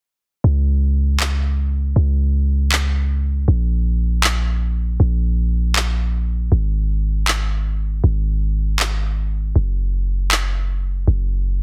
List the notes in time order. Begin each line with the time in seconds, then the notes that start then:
0.44 C#2
1.20 clap
1.96 C#2
2.72 clap
3.48 A#1
4.24 clap
5.00 A#1
5.76 clap
6.52 G#1
7.28 clap
8.04 G#1
8.80 clap
9.56 F#1
10.31 clap
11.07 F#1